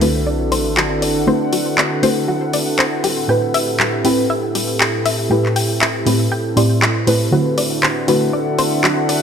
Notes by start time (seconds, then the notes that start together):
Already playing: D3 C4 D4 E4 F#4 A4 B4 E5, sub drop
0.01 D3 A3 C4 E4 F#4 B4, open hi-hat
0.27 D5 F#5
0.52 C5, open hi-hat
0.77 F#4, clap
1.02 D5, open hi-hat
1.26 D3 A3 C4 E4 F#4 B4 C5
1.53 F#4, open hi-hat
1.78 D5, clap
2.02 D3 A3 C4 E4 F#4 B4 C5, open hi-hat
2.28 F#4
2.53 D5, open hi-hat
2.79 C5, clap
3.04 A2 C4 G4, open hi-hat
3.28 A2 C4 E4 G4 B4 G5
3.54 E5, open hi-hat
3.80 G4, clap
4.04 A2 C4 E4 G4 B4 G5, open hi-hat
4.30 E5
4.55 G4, open hi-hat
4.80 G5, clap
5.06 E5, open hi-hat
5.30 A2 C4 E4 G4 B4
5.46 clap
5.56 G5, open hi-hat
5.81 E5, clap
6.06 A2 C4 E4 G4 B4, open hi-hat
6.32 G5
6.56 A2 C4 E4 G4 D5 C6, open hi-hat
6.82 G4, clap
7.07 A2 C4 E4 G4 B4 C5, open hi-hat
7.31 D3 A3 C4 D4 E4 F#4 A4 B4
7.54 D5 F#5, open hi-hat
7.62 A4
7.83 C5, clap
8.04 D3 A3 C4 E4 F#4 E5, open hi-hat
8.08 F#4 B4
8.33 D5
8.59 C5, open hi-hat
8.84 F#4, clap
9.09 D5, open hi-hat